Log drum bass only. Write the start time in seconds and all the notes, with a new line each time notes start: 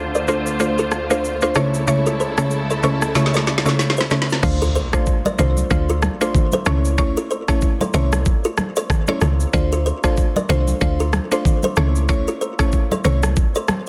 4.43 D2
5.39 C2
5.71 D2
6.66 C#2
7.94 C2
9.22 C#2
9.54 D2
10.49 C2
10.81 D2
11.77 C#2
13.05 C2